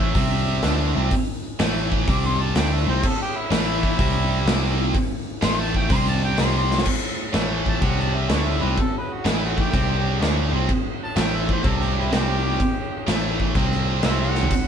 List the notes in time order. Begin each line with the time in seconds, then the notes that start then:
Already playing: A1 A2 E3 A3 E5
0.15 C2 C3 G3 C4, kick, open hi-hat
0.62 D2 D3 A3 D4, snare, open hi-hat
0.95 C2 C3 G3 C4
1.11 kick, open hi-hat
1.59 A1 A2 E3 A3, snare, open hi-hat
1.92 kick
2.08 C2 C3 G3 C4 D6, kick, open hi-hat
2.24 C6, snare
2.41 A5
2.55 D2 D3 A3 D4 G5, snare, open hi-hat
2.75 E5
2.87 C2 C3 G3 C4 C5
3.03 A4, kick, crash
3.22 G4
3.37 E4
3.51 A1 A2 E3 A3 E4, snare, open hi-hat
3.83 kick
3.98 C2 C3 G3 C4, kick, open hi-hat
4.46 C2 C3 G3 C4, snare, open hi-hat
4.95 kick, open hi-hat
5.41 A1 A2 E3 A3 C6, snare, open hi-hat
5.61 A5
5.75 G5, kick
5.89 C2 C3 G3 C4 C6, kick, open hi-hat
6.07 A5, snare
6.24 G5
6.37 C2 C3 G3 C4 C6, snare, open hi-hat
6.57 C6
6.71 snare
6.78 snare
6.85 kick, crash
7.33 A1 A2 E3 A3, snare, crash
7.66 A5, kick
7.81 C2 C3 G3 C4, kick, crash
7.85 F#5
7.99 A5, snare
8.16 E5
8.29 D2 D3 A3 D4 C#5, snare, crash
8.47 E5
8.62 C2 C3 G3 C4 B4
8.77 A4, kick, crash
8.98 B4
9.14 F#4
9.24 A1 A2 E3 A3, snare, crash
9.29 E4
9.46 F#4
9.58 G4, kick
9.73 C2 C3 G3 C4, kick, crash
10.20 D2 D3 A3 D4, snare, crash
10.52 C2 C3 G3 C4
10.69 kick, crash
11.04 A5
11.16 A1 A2 E3 A3, snare, crash
11.21 G5
11.35 E5
11.49 C5, kick
11.63 C2 C3 G3 C4, kick, crash
11.68 A4
11.81 G4, snare
11.99 E4
12.10 C2 C3 G3 C4, snare, crash
12.15 G4
12.60 kick, crash
13.07 A1 A2 E3 A3, snare, crash
13.40 kick
13.55 C2 C3 G3 C4, kick, crash
13.72 snare
14.03 C2 C3 G3 C4 E5, snare, crash
14.21 F#5
14.35 snare
14.43 floor tom
14.51 kick, splash, crash